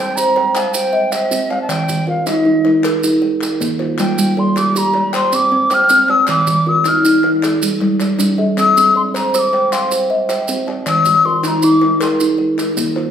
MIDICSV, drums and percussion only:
0, 0, Header, 1, 2, 480
1, 0, Start_track
1, 0, Tempo, 381922
1, 2142, Time_signature, 12, 3, 24, 8
1, 16473, End_track
2, 0, Start_track
2, 0, Title_t, "Drums"
2, 217, Note_on_c, 9, 70, 81
2, 343, Note_off_c, 9, 70, 0
2, 461, Note_on_c, 9, 39, 20
2, 587, Note_off_c, 9, 39, 0
2, 694, Note_on_c, 9, 39, 61
2, 697, Note_on_c, 9, 70, 59
2, 820, Note_off_c, 9, 39, 0
2, 822, Note_off_c, 9, 70, 0
2, 930, Note_on_c, 9, 70, 82
2, 1056, Note_off_c, 9, 70, 0
2, 1409, Note_on_c, 9, 70, 64
2, 1418, Note_on_c, 9, 39, 48
2, 1535, Note_off_c, 9, 70, 0
2, 1544, Note_off_c, 9, 39, 0
2, 1654, Note_on_c, 9, 70, 76
2, 1780, Note_off_c, 9, 70, 0
2, 1897, Note_on_c, 9, 39, 21
2, 2023, Note_off_c, 9, 39, 0
2, 2132, Note_on_c, 9, 70, 58
2, 2135, Note_on_c, 9, 39, 61
2, 2258, Note_off_c, 9, 70, 0
2, 2260, Note_off_c, 9, 39, 0
2, 2372, Note_on_c, 9, 70, 78
2, 2498, Note_off_c, 9, 70, 0
2, 2847, Note_on_c, 9, 70, 58
2, 2858, Note_on_c, 9, 39, 47
2, 2973, Note_off_c, 9, 70, 0
2, 2984, Note_off_c, 9, 39, 0
2, 3336, Note_on_c, 9, 39, 21
2, 3461, Note_off_c, 9, 39, 0
2, 3569, Note_on_c, 9, 39, 67
2, 3576, Note_on_c, 9, 70, 57
2, 3694, Note_off_c, 9, 39, 0
2, 3702, Note_off_c, 9, 70, 0
2, 3813, Note_on_c, 9, 70, 79
2, 3939, Note_off_c, 9, 70, 0
2, 4288, Note_on_c, 9, 39, 46
2, 4307, Note_on_c, 9, 70, 66
2, 4414, Note_off_c, 9, 39, 0
2, 4433, Note_off_c, 9, 70, 0
2, 4543, Note_on_c, 9, 70, 77
2, 4669, Note_off_c, 9, 70, 0
2, 4774, Note_on_c, 9, 39, 19
2, 4900, Note_off_c, 9, 39, 0
2, 5007, Note_on_c, 9, 39, 58
2, 5014, Note_on_c, 9, 70, 58
2, 5133, Note_off_c, 9, 39, 0
2, 5139, Note_off_c, 9, 70, 0
2, 5256, Note_on_c, 9, 70, 82
2, 5382, Note_off_c, 9, 70, 0
2, 5739, Note_on_c, 9, 39, 51
2, 5740, Note_on_c, 9, 70, 57
2, 5865, Note_off_c, 9, 39, 0
2, 5866, Note_off_c, 9, 70, 0
2, 5984, Note_on_c, 9, 70, 75
2, 6110, Note_off_c, 9, 70, 0
2, 6213, Note_on_c, 9, 39, 20
2, 6339, Note_off_c, 9, 39, 0
2, 6454, Note_on_c, 9, 70, 53
2, 6456, Note_on_c, 9, 39, 67
2, 6580, Note_off_c, 9, 70, 0
2, 6582, Note_off_c, 9, 39, 0
2, 6692, Note_on_c, 9, 70, 73
2, 6818, Note_off_c, 9, 70, 0
2, 7173, Note_on_c, 9, 39, 47
2, 7175, Note_on_c, 9, 70, 59
2, 7299, Note_off_c, 9, 39, 0
2, 7300, Note_off_c, 9, 70, 0
2, 7405, Note_on_c, 9, 70, 78
2, 7531, Note_off_c, 9, 70, 0
2, 7652, Note_on_c, 9, 39, 21
2, 7778, Note_off_c, 9, 39, 0
2, 7883, Note_on_c, 9, 70, 59
2, 7886, Note_on_c, 9, 39, 61
2, 8009, Note_off_c, 9, 70, 0
2, 8011, Note_off_c, 9, 39, 0
2, 8131, Note_on_c, 9, 70, 74
2, 8257, Note_off_c, 9, 70, 0
2, 8610, Note_on_c, 9, 39, 48
2, 8612, Note_on_c, 9, 70, 60
2, 8735, Note_off_c, 9, 39, 0
2, 8737, Note_off_c, 9, 70, 0
2, 8860, Note_on_c, 9, 70, 80
2, 8986, Note_off_c, 9, 70, 0
2, 9096, Note_on_c, 9, 39, 20
2, 9222, Note_off_c, 9, 39, 0
2, 9339, Note_on_c, 9, 39, 60
2, 9345, Note_on_c, 9, 70, 60
2, 9465, Note_off_c, 9, 39, 0
2, 9470, Note_off_c, 9, 70, 0
2, 9581, Note_on_c, 9, 70, 77
2, 9707, Note_off_c, 9, 70, 0
2, 9818, Note_on_c, 9, 39, 18
2, 9944, Note_off_c, 9, 39, 0
2, 10058, Note_on_c, 9, 39, 47
2, 10059, Note_on_c, 9, 70, 63
2, 10183, Note_off_c, 9, 39, 0
2, 10184, Note_off_c, 9, 70, 0
2, 10297, Note_on_c, 9, 39, 18
2, 10299, Note_on_c, 9, 70, 83
2, 10423, Note_off_c, 9, 39, 0
2, 10424, Note_off_c, 9, 70, 0
2, 10781, Note_on_c, 9, 39, 57
2, 10785, Note_on_c, 9, 70, 63
2, 10906, Note_off_c, 9, 39, 0
2, 10911, Note_off_c, 9, 70, 0
2, 11025, Note_on_c, 9, 70, 79
2, 11151, Note_off_c, 9, 70, 0
2, 11507, Note_on_c, 9, 39, 46
2, 11510, Note_on_c, 9, 70, 60
2, 11632, Note_off_c, 9, 39, 0
2, 11636, Note_off_c, 9, 70, 0
2, 11743, Note_on_c, 9, 70, 85
2, 11868, Note_off_c, 9, 70, 0
2, 11992, Note_on_c, 9, 39, 20
2, 12117, Note_off_c, 9, 39, 0
2, 12224, Note_on_c, 9, 70, 58
2, 12226, Note_on_c, 9, 39, 63
2, 12349, Note_off_c, 9, 70, 0
2, 12352, Note_off_c, 9, 39, 0
2, 12459, Note_on_c, 9, 70, 76
2, 12585, Note_off_c, 9, 70, 0
2, 12938, Note_on_c, 9, 70, 63
2, 12940, Note_on_c, 9, 39, 47
2, 13064, Note_off_c, 9, 70, 0
2, 13065, Note_off_c, 9, 39, 0
2, 13171, Note_on_c, 9, 70, 70
2, 13297, Note_off_c, 9, 70, 0
2, 13431, Note_on_c, 9, 39, 20
2, 13556, Note_off_c, 9, 39, 0
2, 13656, Note_on_c, 9, 70, 52
2, 13658, Note_on_c, 9, 39, 65
2, 13781, Note_off_c, 9, 70, 0
2, 13783, Note_off_c, 9, 39, 0
2, 13891, Note_on_c, 9, 70, 73
2, 14017, Note_off_c, 9, 70, 0
2, 14379, Note_on_c, 9, 70, 62
2, 14381, Note_on_c, 9, 39, 51
2, 14504, Note_off_c, 9, 70, 0
2, 14507, Note_off_c, 9, 39, 0
2, 14609, Note_on_c, 9, 70, 78
2, 14735, Note_off_c, 9, 70, 0
2, 14858, Note_on_c, 9, 39, 19
2, 14983, Note_off_c, 9, 39, 0
2, 15098, Note_on_c, 9, 39, 66
2, 15100, Note_on_c, 9, 70, 61
2, 15224, Note_off_c, 9, 39, 0
2, 15226, Note_off_c, 9, 70, 0
2, 15336, Note_on_c, 9, 70, 77
2, 15462, Note_off_c, 9, 70, 0
2, 15818, Note_on_c, 9, 39, 44
2, 15822, Note_on_c, 9, 70, 64
2, 15943, Note_off_c, 9, 39, 0
2, 15948, Note_off_c, 9, 70, 0
2, 16053, Note_on_c, 9, 70, 77
2, 16178, Note_off_c, 9, 70, 0
2, 16294, Note_on_c, 9, 39, 20
2, 16420, Note_off_c, 9, 39, 0
2, 16473, End_track
0, 0, End_of_file